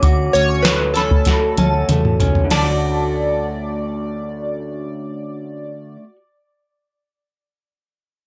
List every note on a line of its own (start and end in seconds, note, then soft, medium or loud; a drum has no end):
0.00 0.27 D2 medium
0.00 0.65 A3 medium
0.00 0.35 C#4 medium
0.00 0.32 D6 medium
0.00 kick medium
0.00 closed hi-hat medium
0.04 1.27 F#4 medium
0.33 1.54 D2 medium
0.33 0.95 C#4 soft
0.33 0.62 C#5 loud
0.33 closed hi-hat medium
0.49 0.64 C#6 medium
0.62 1.89 A3 soft
0.62 0.76 B4 medium
0.62 snare loud
0.62 closed hi-hat medium
0.94 1.57 C#4 medium
0.94 1.84 A4 medium
0.94 1.40 B5 medium
0.94 snare soft
0.94 closed hi-hat medium
1.11 kick medium
1.25 2.64 F#4 medium
1.25 kick medium
1.25 snare soft
1.25 closed hi-hat medium
1.57 1.82 D2 medium
1.57 2.19 C#4 soft
1.57 1.73 A5 medium
1.57 closed hi-hat medium
1.57 high tom medium
1.88 2.21 E2 medium
1.88 2.52 A3 medium
1.88 closed hi-hat medium
1.88 mid tom medium
2.05 mid tom medium
2.20 2.44 C#2 medium
2.20 5.70 C#4 medium
2.20 closed hi-hat medium
2.20 floor tom medium
2.35 floor tom medium
2.45 5.96 D3 medium
2.50 5.98 D2 medium
2.50 6.03 A3 medium
2.50 5.99 D5 medium
2.50 4.33 A5 medium
2.50 snare medium
2.50 crash medium
2.64 6.16 F#4 medium